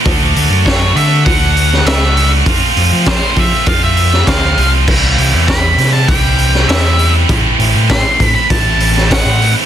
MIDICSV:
0, 0, Header, 1, 5, 480
1, 0, Start_track
1, 0, Tempo, 603622
1, 44, Time_signature, 4, 2, 24, 8
1, 7679, End_track
2, 0, Start_track
2, 0, Title_t, "Lead electric guitar"
2, 0, Program_c, 0, 29
2, 523, Note_on_c, 0, 73, 89
2, 762, Note_on_c, 0, 76, 95
2, 770, Note_off_c, 0, 73, 0
2, 985, Note_off_c, 0, 76, 0
2, 995, Note_on_c, 0, 78, 114
2, 1481, Note_off_c, 0, 78, 0
2, 1484, Note_on_c, 0, 76, 82
2, 1817, Note_off_c, 0, 76, 0
2, 2449, Note_on_c, 0, 72, 91
2, 2689, Note_on_c, 0, 76, 93
2, 2692, Note_off_c, 0, 72, 0
2, 2922, Note_off_c, 0, 76, 0
2, 2925, Note_on_c, 0, 77, 110
2, 3046, Note_off_c, 0, 77, 0
2, 3051, Note_on_c, 0, 76, 114
2, 3401, Note_off_c, 0, 76, 0
2, 3404, Note_on_c, 0, 77, 95
2, 3736, Note_off_c, 0, 77, 0
2, 4359, Note_on_c, 0, 83, 112
2, 4694, Note_off_c, 0, 83, 0
2, 4712, Note_on_c, 0, 81, 104
2, 4827, Note_off_c, 0, 81, 0
2, 4834, Note_on_c, 0, 79, 101
2, 5312, Note_off_c, 0, 79, 0
2, 5316, Note_on_c, 0, 76, 75
2, 5653, Note_off_c, 0, 76, 0
2, 6286, Note_on_c, 0, 84, 110
2, 6637, Note_off_c, 0, 84, 0
2, 6640, Note_on_c, 0, 83, 99
2, 6762, Note_off_c, 0, 83, 0
2, 6762, Note_on_c, 0, 81, 99
2, 7247, Note_on_c, 0, 78, 78
2, 7258, Note_off_c, 0, 81, 0
2, 7582, Note_off_c, 0, 78, 0
2, 7679, End_track
3, 0, Start_track
3, 0, Title_t, "Distorted electric guitar"
3, 0, Program_c, 1, 30
3, 34, Note_on_c, 1, 50, 102
3, 38, Note_on_c, 1, 57, 98
3, 41, Note_on_c, 1, 62, 104
3, 43, Note_on_c, 1, 66, 104
3, 509, Note_off_c, 1, 50, 0
3, 515, Note_off_c, 1, 62, 0
3, 518, Note_off_c, 1, 66, 0
3, 518, Note_on_c, 1, 50, 92
3, 520, Note_off_c, 1, 57, 0
3, 523, Note_on_c, 1, 57, 91
3, 525, Note_on_c, 1, 62, 111
3, 528, Note_on_c, 1, 66, 102
3, 745, Note_off_c, 1, 50, 0
3, 748, Note_off_c, 1, 62, 0
3, 754, Note_off_c, 1, 57, 0
3, 754, Note_off_c, 1, 66, 0
3, 754, Note_on_c, 1, 50, 89
3, 757, Note_on_c, 1, 57, 95
3, 758, Note_on_c, 1, 62, 94
3, 764, Note_on_c, 1, 66, 99
3, 984, Note_off_c, 1, 50, 0
3, 989, Note_off_c, 1, 57, 0
3, 992, Note_off_c, 1, 62, 0
3, 992, Note_off_c, 1, 66, 0
3, 994, Note_on_c, 1, 50, 100
3, 999, Note_on_c, 1, 57, 102
3, 1001, Note_on_c, 1, 62, 111
3, 1001, Note_on_c, 1, 66, 107
3, 1463, Note_off_c, 1, 50, 0
3, 1464, Note_off_c, 1, 57, 0
3, 1469, Note_off_c, 1, 62, 0
3, 1471, Note_off_c, 1, 66, 0
3, 1472, Note_on_c, 1, 50, 85
3, 1474, Note_on_c, 1, 57, 92
3, 1478, Note_on_c, 1, 62, 95
3, 1481, Note_on_c, 1, 66, 93
3, 1708, Note_off_c, 1, 50, 0
3, 1709, Note_off_c, 1, 57, 0
3, 1716, Note_off_c, 1, 62, 0
3, 1717, Note_off_c, 1, 66, 0
3, 1718, Note_on_c, 1, 50, 92
3, 1719, Note_on_c, 1, 57, 99
3, 1726, Note_on_c, 1, 62, 100
3, 1726, Note_on_c, 1, 66, 100
3, 1945, Note_off_c, 1, 50, 0
3, 1945, Note_off_c, 1, 57, 0
3, 1949, Note_off_c, 1, 62, 0
3, 1949, Note_off_c, 1, 66, 0
3, 1953, Note_on_c, 1, 53, 88
3, 1957, Note_on_c, 1, 57, 88
3, 1959, Note_on_c, 1, 60, 96
3, 1964, Note_on_c, 1, 65, 113
3, 2430, Note_off_c, 1, 53, 0
3, 2435, Note_off_c, 1, 57, 0
3, 2437, Note_off_c, 1, 65, 0
3, 2439, Note_on_c, 1, 53, 87
3, 2441, Note_off_c, 1, 60, 0
3, 2444, Note_on_c, 1, 57, 96
3, 2444, Note_on_c, 1, 60, 96
3, 2447, Note_on_c, 1, 65, 104
3, 2662, Note_off_c, 1, 53, 0
3, 2668, Note_off_c, 1, 57, 0
3, 2672, Note_on_c, 1, 53, 85
3, 2673, Note_off_c, 1, 65, 0
3, 2675, Note_off_c, 1, 60, 0
3, 2678, Note_on_c, 1, 57, 83
3, 2679, Note_on_c, 1, 60, 89
3, 2682, Note_on_c, 1, 65, 85
3, 2910, Note_off_c, 1, 53, 0
3, 2912, Note_off_c, 1, 57, 0
3, 2918, Note_off_c, 1, 65, 0
3, 2922, Note_off_c, 1, 60, 0
3, 2922, Note_on_c, 1, 57, 113
3, 2925, Note_on_c, 1, 60, 103
3, 2927, Note_on_c, 1, 65, 114
3, 3398, Note_off_c, 1, 57, 0
3, 3402, Note_off_c, 1, 65, 0
3, 3404, Note_on_c, 1, 53, 90
3, 3406, Note_off_c, 1, 60, 0
3, 3408, Note_on_c, 1, 57, 84
3, 3409, Note_on_c, 1, 60, 101
3, 3412, Note_on_c, 1, 65, 102
3, 3636, Note_off_c, 1, 53, 0
3, 3639, Note_off_c, 1, 57, 0
3, 3643, Note_off_c, 1, 65, 0
3, 3646, Note_on_c, 1, 53, 84
3, 3648, Note_off_c, 1, 60, 0
3, 3649, Note_on_c, 1, 57, 87
3, 3651, Note_on_c, 1, 60, 86
3, 3653, Note_on_c, 1, 65, 97
3, 3868, Note_off_c, 1, 53, 0
3, 3870, Note_off_c, 1, 57, 0
3, 3872, Note_off_c, 1, 65, 0
3, 3882, Note_on_c, 1, 48, 102
3, 3887, Note_on_c, 1, 52, 95
3, 3889, Note_on_c, 1, 55, 105
3, 3890, Note_off_c, 1, 60, 0
3, 3893, Note_on_c, 1, 60, 99
3, 3895, Note_on_c, 1, 64, 101
3, 4350, Note_off_c, 1, 48, 0
3, 4358, Note_off_c, 1, 55, 0
3, 4363, Note_off_c, 1, 52, 0
3, 4365, Note_off_c, 1, 60, 0
3, 4369, Note_off_c, 1, 64, 0
3, 4373, Note_on_c, 1, 64, 97
3, 4597, Note_on_c, 1, 48, 77
3, 4599, Note_on_c, 1, 52, 89
3, 4603, Note_on_c, 1, 55, 95
3, 4606, Note_off_c, 1, 64, 0
3, 4607, Note_on_c, 1, 60, 89
3, 4609, Note_on_c, 1, 64, 96
3, 4829, Note_off_c, 1, 48, 0
3, 4831, Note_off_c, 1, 52, 0
3, 4837, Note_off_c, 1, 55, 0
3, 4839, Note_on_c, 1, 48, 94
3, 4840, Note_off_c, 1, 60, 0
3, 4841, Note_off_c, 1, 64, 0
3, 4841, Note_on_c, 1, 52, 102
3, 4846, Note_on_c, 1, 55, 105
3, 4850, Note_on_c, 1, 60, 111
3, 4851, Note_on_c, 1, 64, 106
3, 5304, Note_off_c, 1, 48, 0
3, 5306, Note_off_c, 1, 52, 0
3, 5307, Note_off_c, 1, 55, 0
3, 5311, Note_off_c, 1, 60, 0
3, 5314, Note_on_c, 1, 48, 89
3, 5315, Note_off_c, 1, 64, 0
3, 5316, Note_on_c, 1, 52, 85
3, 5316, Note_on_c, 1, 55, 89
3, 5320, Note_on_c, 1, 60, 98
3, 5325, Note_on_c, 1, 64, 91
3, 5544, Note_off_c, 1, 48, 0
3, 5550, Note_off_c, 1, 52, 0
3, 5551, Note_off_c, 1, 55, 0
3, 5553, Note_on_c, 1, 48, 84
3, 5554, Note_off_c, 1, 60, 0
3, 5557, Note_off_c, 1, 64, 0
3, 5560, Note_on_c, 1, 52, 91
3, 5561, Note_on_c, 1, 55, 95
3, 5563, Note_on_c, 1, 60, 84
3, 5566, Note_on_c, 1, 64, 93
3, 5783, Note_off_c, 1, 48, 0
3, 5786, Note_off_c, 1, 52, 0
3, 5786, Note_off_c, 1, 55, 0
3, 5788, Note_off_c, 1, 60, 0
3, 5789, Note_off_c, 1, 64, 0
3, 5798, Note_on_c, 1, 45, 97
3, 5800, Note_on_c, 1, 52, 102
3, 5800, Note_on_c, 1, 57, 108
3, 5804, Note_on_c, 1, 60, 108
3, 5808, Note_on_c, 1, 64, 120
3, 6268, Note_off_c, 1, 45, 0
3, 6272, Note_off_c, 1, 52, 0
3, 6276, Note_off_c, 1, 60, 0
3, 6277, Note_on_c, 1, 45, 104
3, 6279, Note_off_c, 1, 64, 0
3, 6280, Note_off_c, 1, 57, 0
3, 6282, Note_on_c, 1, 52, 108
3, 6289, Note_on_c, 1, 64, 108
3, 6512, Note_off_c, 1, 45, 0
3, 6515, Note_off_c, 1, 52, 0
3, 6522, Note_on_c, 1, 45, 83
3, 6523, Note_off_c, 1, 64, 0
3, 6524, Note_on_c, 1, 52, 91
3, 6528, Note_on_c, 1, 57, 100
3, 6529, Note_on_c, 1, 60, 90
3, 6533, Note_on_c, 1, 64, 99
3, 6747, Note_off_c, 1, 45, 0
3, 6752, Note_off_c, 1, 52, 0
3, 6753, Note_off_c, 1, 57, 0
3, 6757, Note_on_c, 1, 45, 105
3, 6759, Note_off_c, 1, 60, 0
3, 6761, Note_off_c, 1, 64, 0
3, 6761, Note_on_c, 1, 52, 106
3, 6762, Note_on_c, 1, 57, 109
3, 6769, Note_on_c, 1, 60, 100
3, 6770, Note_on_c, 1, 64, 109
3, 7230, Note_off_c, 1, 45, 0
3, 7235, Note_off_c, 1, 52, 0
3, 7238, Note_off_c, 1, 57, 0
3, 7239, Note_on_c, 1, 45, 86
3, 7240, Note_off_c, 1, 60, 0
3, 7244, Note_off_c, 1, 64, 0
3, 7253, Note_on_c, 1, 64, 101
3, 7474, Note_off_c, 1, 45, 0
3, 7484, Note_on_c, 1, 45, 91
3, 7485, Note_on_c, 1, 52, 86
3, 7486, Note_off_c, 1, 64, 0
3, 7489, Note_on_c, 1, 57, 100
3, 7493, Note_on_c, 1, 60, 97
3, 7496, Note_on_c, 1, 64, 92
3, 7679, Note_off_c, 1, 45, 0
3, 7679, Note_off_c, 1, 52, 0
3, 7679, Note_off_c, 1, 57, 0
3, 7679, Note_off_c, 1, 60, 0
3, 7679, Note_off_c, 1, 64, 0
3, 7679, End_track
4, 0, Start_track
4, 0, Title_t, "Picked electric bass"
4, 0, Program_c, 2, 34
4, 46, Note_on_c, 2, 38, 104
4, 258, Note_off_c, 2, 38, 0
4, 286, Note_on_c, 2, 38, 106
4, 391, Note_off_c, 2, 38, 0
4, 401, Note_on_c, 2, 42, 92
4, 722, Note_off_c, 2, 42, 0
4, 759, Note_on_c, 2, 50, 104
4, 974, Note_off_c, 2, 50, 0
4, 1004, Note_on_c, 2, 38, 108
4, 1430, Note_off_c, 2, 38, 0
4, 1480, Note_on_c, 2, 37, 107
4, 1907, Note_off_c, 2, 37, 0
4, 1958, Note_on_c, 2, 41, 99
4, 2066, Note_off_c, 2, 41, 0
4, 2204, Note_on_c, 2, 41, 107
4, 2309, Note_off_c, 2, 41, 0
4, 2327, Note_on_c, 2, 53, 93
4, 2537, Note_off_c, 2, 53, 0
4, 2678, Note_on_c, 2, 53, 93
4, 2786, Note_off_c, 2, 53, 0
4, 2917, Note_on_c, 2, 41, 97
4, 3345, Note_off_c, 2, 41, 0
4, 3398, Note_on_c, 2, 38, 90
4, 3615, Note_off_c, 2, 38, 0
4, 3639, Note_on_c, 2, 36, 87
4, 3855, Note_off_c, 2, 36, 0
4, 3880, Note_on_c, 2, 36, 96
4, 4093, Note_off_c, 2, 36, 0
4, 4118, Note_on_c, 2, 36, 96
4, 4225, Note_off_c, 2, 36, 0
4, 4243, Note_on_c, 2, 40, 92
4, 4562, Note_off_c, 2, 40, 0
4, 4592, Note_on_c, 2, 48, 106
4, 4809, Note_off_c, 2, 48, 0
4, 4838, Note_on_c, 2, 36, 114
4, 5267, Note_off_c, 2, 36, 0
4, 5316, Note_on_c, 2, 40, 102
4, 5746, Note_off_c, 2, 40, 0
4, 5799, Note_on_c, 2, 33, 104
4, 5907, Note_off_c, 2, 33, 0
4, 6038, Note_on_c, 2, 33, 102
4, 6147, Note_off_c, 2, 33, 0
4, 6163, Note_on_c, 2, 45, 86
4, 6377, Note_off_c, 2, 45, 0
4, 6521, Note_on_c, 2, 45, 88
4, 6629, Note_off_c, 2, 45, 0
4, 6761, Note_on_c, 2, 33, 96
4, 7298, Note_off_c, 2, 33, 0
4, 7361, Note_on_c, 2, 45, 93
4, 7577, Note_off_c, 2, 45, 0
4, 7679, End_track
5, 0, Start_track
5, 0, Title_t, "Drums"
5, 45, Note_on_c, 9, 36, 127
5, 46, Note_on_c, 9, 46, 89
5, 124, Note_off_c, 9, 36, 0
5, 126, Note_off_c, 9, 46, 0
5, 289, Note_on_c, 9, 46, 68
5, 369, Note_off_c, 9, 46, 0
5, 524, Note_on_c, 9, 36, 91
5, 529, Note_on_c, 9, 46, 91
5, 539, Note_on_c, 9, 38, 122
5, 604, Note_off_c, 9, 36, 0
5, 609, Note_off_c, 9, 46, 0
5, 618, Note_off_c, 9, 38, 0
5, 768, Note_on_c, 9, 46, 64
5, 847, Note_off_c, 9, 46, 0
5, 1002, Note_on_c, 9, 36, 118
5, 1004, Note_on_c, 9, 46, 88
5, 1082, Note_off_c, 9, 36, 0
5, 1083, Note_off_c, 9, 46, 0
5, 1245, Note_on_c, 9, 46, 62
5, 1325, Note_off_c, 9, 46, 0
5, 1376, Note_on_c, 9, 38, 35
5, 1456, Note_off_c, 9, 38, 0
5, 1482, Note_on_c, 9, 46, 100
5, 1492, Note_on_c, 9, 38, 122
5, 1562, Note_off_c, 9, 46, 0
5, 1571, Note_off_c, 9, 38, 0
5, 1612, Note_on_c, 9, 38, 34
5, 1692, Note_off_c, 9, 38, 0
5, 1724, Note_on_c, 9, 46, 65
5, 1804, Note_off_c, 9, 46, 0
5, 1958, Note_on_c, 9, 36, 113
5, 1958, Note_on_c, 9, 46, 96
5, 2038, Note_off_c, 9, 36, 0
5, 2038, Note_off_c, 9, 46, 0
5, 2199, Note_on_c, 9, 46, 71
5, 2279, Note_off_c, 9, 46, 0
5, 2435, Note_on_c, 9, 46, 96
5, 2438, Note_on_c, 9, 36, 97
5, 2444, Note_on_c, 9, 38, 115
5, 2514, Note_off_c, 9, 46, 0
5, 2517, Note_off_c, 9, 36, 0
5, 2524, Note_off_c, 9, 38, 0
5, 2673, Note_on_c, 9, 46, 77
5, 2678, Note_on_c, 9, 36, 91
5, 2753, Note_off_c, 9, 46, 0
5, 2757, Note_off_c, 9, 36, 0
5, 2912, Note_on_c, 9, 46, 97
5, 2917, Note_on_c, 9, 36, 127
5, 2992, Note_off_c, 9, 46, 0
5, 2997, Note_off_c, 9, 36, 0
5, 3155, Note_on_c, 9, 46, 67
5, 3235, Note_off_c, 9, 46, 0
5, 3285, Note_on_c, 9, 38, 33
5, 3365, Note_off_c, 9, 38, 0
5, 3396, Note_on_c, 9, 46, 99
5, 3397, Note_on_c, 9, 36, 89
5, 3405, Note_on_c, 9, 38, 127
5, 3475, Note_off_c, 9, 46, 0
5, 3477, Note_off_c, 9, 36, 0
5, 3485, Note_off_c, 9, 38, 0
5, 3529, Note_on_c, 9, 38, 35
5, 3608, Note_off_c, 9, 38, 0
5, 3638, Note_on_c, 9, 46, 71
5, 3718, Note_off_c, 9, 46, 0
5, 3878, Note_on_c, 9, 49, 123
5, 3879, Note_on_c, 9, 36, 114
5, 3957, Note_off_c, 9, 49, 0
5, 3958, Note_off_c, 9, 36, 0
5, 4120, Note_on_c, 9, 46, 72
5, 4200, Note_off_c, 9, 46, 0
5, 4359, Note_on_c, 9, 36, 91
5, 4360, Note_on_c, 9, 46, 88
5, 4369, Note_on_c, 9, 38, 110
5, 4439, Note_off_c, 9, 36, 0
5, 4439, Note_off_c, 9, 46, 0
5, 4449, Note_off_c, 9, 38, 0
5, 4599, Note_on_c, 9, 46, 69
5, 4609, Note_on_c, 9, 38, 35
5, 4679, Note_off_c, 9, 46, 0
5, 4688, Note_off_c, 9, 38, 0
5, 4839, Note_on_c, 9, 36, 126
5, 4839, Note_on_c, 9, 46, 93
5, 4918, Note_off_c, 9, 36, 0
5, 4918, Note_off_c, 9, 46, 0
5, 5076, Note_on_c, 9, 46, 58
5, 5156, Note_off_c, 9, 46, 0
5, 5206, Note_on_c, 9, 38, 35
5, 5286, Note_off_c, 9, 38, 0
5, 5320, Note_on_c, 9, 46, 90
5, 5329, Note_on_c, 9, 38, 123
5, 5399, Note_off_c, 9, 46, 0
5, 5409, Note_off_c, 9, 38, 0
5, 5447, Note_on_c, 9, 38, 36
5, 5527, Note_off_c, 9, 38, 0
5, 5559, Note_on_c, 9, 46, 64
5, 5638, Note_off_c, 9, 46, 0
5, 5797, Note_on_c, 9, 46, 96
5, 5799, Note_on_c, 9, 36, 126
5, 5877, Note_off_c, 9, 46, 0
5, 5878, Note_off_c, 9, 36, 0
5, 6040, Note_on_c, 9, 46, 73
5, 6120, Note_off_c, 9, 46, 0
5, 6278, Note_on_c, 9, 46, 91
5, 6280, Note_on_c, 9, 36, 90
5, 6288, Note_on_c, 9, 38, 118
5, 6358, Note_off_c, 9, 46, 0
5, 6359, Note_off_c, 9, 36, 0
5, 6367, Note_off_c, 9, 38, 0
5, 6521, Note_on_c, 9, 36, 89
5, 6521, Note_on_c, 9, 46, 67
5, 6600, Note_off_c, 9, 46, 0
5, 6601, Note_off_c, 9, 36, 0
5, 6761, Note_on_c, 9, 36, 122
5, 6762, Note_on_c, 9, 46, 97
5, 6841, Note_off_c, 9, 36, 0
5, 6841, Note_off_c, 9, 46, 0
5, 7000, Note_on_c, 9, 46, 72
5, 7079, Note_off_c, 9, 46, 0
5, 7134, Note_on_c, 9, 38, 33
5, 7214, Note_off_c, 9, 38, 0
5, 7244, Note_on_c, 9, 36, 87
5, 7244, Note_on_c, 9, 46, 106
5, 7253, Note_on_c, 9, 38, 127
5, 7323, Note_off_c, 9, 46, 0
5, 7324, Note_off_c, 9, 36, 0
5, 7333, Note_off_c, 9, 38, 0
5, 7490, Note_on_c, 9, 46, 76
5, 7569, Note_off_c, 9, 46, 0
5, 7679, End_track
0, 0, End_of_file